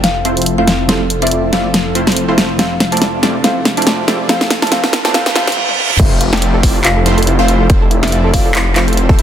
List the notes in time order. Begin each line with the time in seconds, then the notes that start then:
Already playing: F1 F3 C4 E4 A4, riser
0.04 F5, snare, closed hi-hat
0.25 A3 C4 E4 F4 C5, closed hi-hat
0.37 closed hi-hat
0.42 closed hi-hat
0.46 closed hi-hat
0.58 A3 C4 E4 F4 C5 F5
0.68 snare, closed hi-hat
0.87 F3 A3 C4 E4 F4 G4 A4 C5 D5, snare, closed hi-hat
1.10 closed hi-hat
1.22 A3 C4 E4 F4 D5 E5, closed hi-hat
1.27 closed hi-hat
1.31 closed hi-hat
1.52 F3 A3 C4 E4 F4 G4 A4 D5 F5, snare, closed hi-hat
1.74 snare, closed hi-hat
1.95 A3 C4 E4 F4 C5, closed hi-hat
2.07 snare, closed hi-hat
2.12 closed hi-hat
2.17 closed hi-hat
2.28 A3 C4 E4 F4 C5
2.38 snare, closed hi-hat
2.57 F3 A3 C4 D4 E4 F4 G4 A4 C5 F5, snare, closed hi-hat
2.80 snare, closed hi-hat
2.92 A3 C4 E4 F4 D5 A5, closed hi-hat
2.97 closed hi-hat
3.02 snare, closed hi-hat
3.22 F3 A3 C4 E4 F4 G4 A4 D5, snare, closed hi-hat
3.42 F3 A3 C4 E4 F4 G4 C5 F5, snare, closed hi-hat
3.46 A4
3.65 snare, closed hi-hat
3.77 A3 C4 E4 F4 D5 A5, closed hi-hat
3.82 closed hi-hat
3.87 snare, closed hi-hat
4.07 F3 A3 C4 E4 F4 G4 A4 D5, snare, closed hi-hat
4.27 F3 A3 C4 E4 F4 G4 C5 F5, snare, closed hi-hat
4.31 A4
4.41 snare
4.50 snare, closed hi-hat
4.62 A3 C4 E4 F4 D5 A5, snare, closed hi-hat
4.67 F3 C4, closed hi-hat
4.72 A3 C4 E4 F4 G4 A4 C5 F5, snare, closed hi-hat
4.84 snare
4.93 snare, closed hi-hat
5.05 A3 C4 E4 F4 D5 A5, snare
5.12 F3 A3 C4 E4 F4 G4 A4 C5 F5, snare, closed hi-hat, reverse cymbal
5.26 snare
5.34 F3 A3 C4 E4 F4 G4 A4 C5 F5, snare, closed hi-hat
5.47 snare, closed hi-hat
5.52 closed hi-hat
5.57 high tom
5.69 high tom
5.90 mid tom
5.99 F1 A3 C4 E4 F4 C5 E5, kick, closed hi-hat, crash
6.21 F4, closed hi-hat
6.33 A3 C4 E4 F4 A4 D5 G5, snare, closed hi-hat
6.37 closed hi-hat
6.42 closed hi-hat
6.54 A4
6.63 A3 C4 E4 F4 D5, kick, open hi-hat
6.85 F4 F5, clap, closed hi-hat
6.97 A4
7.06 A3 C4 E4 F4 C5, closed hi-hat
7.18 A4, closed hi-hat
7.22 closed hi-hat
7.27 E4, closed hi-hat
7.39 A3 C4 E4 F4 C5 F5
7.48 F4, closed hi-hat
7.61 A4
7.70 C5 D5, kick, closed hi-hat
7.82 A4
7.91 E4, closed hi-hat
8.03 A3 C4 E4 F4 D5 E5, snare, closed hi-hat
8.08 closed hi-hat
8.12 F4, closed hi-hat
8.24 A4
8.33 A3 C4 E4 F4 D5 F5, kick, open hi-hat
8.45 A4
8.55 E4, clap, closed hi-hat
8.76 A3 C4 E4 F4 C5, clap, closed hi-hat
8.88 A4, closed hi-hat
8.93 closed hi-hat
8.97 closed hi-hat
9.09 A3 C4 E4 F4 A4 C5, kick
9.19 E4, closed hi-hat